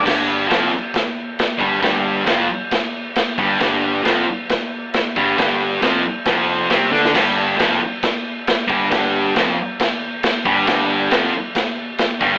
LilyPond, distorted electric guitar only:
\new Staff \with { instrumentName = "Distorted electric guitar" } { \clef bass \time 4/4 \key c \dorian \tempo 4 = 136 <g, g>4 <f, f>8 r2 <g, g>8 | <g, g>4 <f, f>8 r2 <g, g>8 | <g, g>4 <f, f>8 r2 <g, g>8 | <g, g>4 <f, f>8 r8 <f, f>4 <c c'>8 <d d'>8 |
<g, g>4 <f, f>8 r2 <g, g>8 | <g, g>4 <f, f>8 r2 <g, g>8 | <g, g>4 <f, f>8 r2 <g, g>8 | }